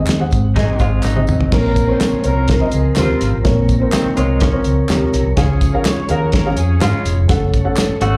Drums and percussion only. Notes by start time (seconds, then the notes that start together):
0.06 snare, clap, closed hi-hat, tambourine
0.31 kick, closed hi-hat, tambourine
0.56 kick, snare, closed hi-hat
0.79 kick, closed hi-hat, tambourine
1.03 snare, clap, tambourine
1.17 high tom
1.27 mid tom, tambourine
1.41 floor tom
1.52 kick, snare, crash, tambourine
1.76 kick, closed hi-hat, tambourine
2.00 snare, clap, closed hi-hat, tambourine
2.24 closed hi-hat, tambourine
2.48 kick, snare, closed hi-hat, tambourine
2.71 closed hi-hat, tambourine
2.96 snare, clap, closed hi-hat, tambourine
3.21 snare, closed hi-hat, tambourine
3.45 kick, snare, closed hi-hat, tambourine
3.69 kick, closed hi-hat, tambourine
3.92 snare, clap, closed hi-hat, tambourine
4.17 closed hi-hat, tambourine
4.40 kick, snare, closed hi-hat
4.64 closed hi-hat, tambourine
4.89 snare, clap, closed hi-hat, tambourine
5.13 snare, closed hi-hat, tambourine
5.37 kick, snare, closed hi-hat, tambourine
5.61 kick, closed hi-hat, tambourine
5.85 snare, clap, closed hi-hat, tambourine
6.09 closed hi-hat
6.32 kick, snare, closed hi-hat
6.57 closed hi-hat, tambourine
6.81 snare, clap, closed hi-hat, tambourine
7.05 closed hi-hat, tambourine
7.29 kick, snare, closed hi-hat, tambourine
7.54 kick, closed hi-hat, tambourine
7.76 snare, clap, closed hi-hat, tambourine
8.01 closed hi-hat, tambourine